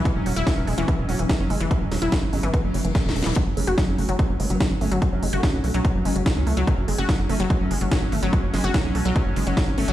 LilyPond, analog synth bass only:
\new Staff \with { instrumentName = "Analog synth bass" } { \clef bass \time 4/4 \key e \mixolydian \tempo 4 = 145 r16 e,,16 e,,16 e,,16 r16 e,,16 e,,16 e,,16 r16 e,,16 e,,16 e,,16 r16 fis,,16 fis,,16 fis,,16 | r16 e,,16 e,,16 e,,16 r16 gis,,16 gis,,16 gis,,16 r16 fis,,16 fis,,16 fis,,16 r16 e,,16 e,,16 e,,16 | r16 fis,,16 fis,,16 fis,,16 r16 fis,,16 fis,,16 fis,,16 r16 fis,,16 fis,,16 fis,,16 r16 gis,,16 gis,,16 gis,,16 | r16 fis,,16 fis,,16 fis,,16 r16 b,,16 b,,16 b,,16 r16 fis,,16 fis,,16 fis,,16 r16 cis,16 cis,16 cis,16 |
r16 fis,,16 fis,,16 fis,,16 r16 fis,,16 fis,,16 fis,,16 r16 fis,,16 fis,,16 fis,,16 r16 gis,,16 gis,,16 gis,,16 | r16 fis,,16 fis,,16 fis,,16 r16 b,,16 b,,16 b,,16 r16 fis,,16 fis,,16 fis,,16 r16 gis,,16 gis,,16 gis,,16 | }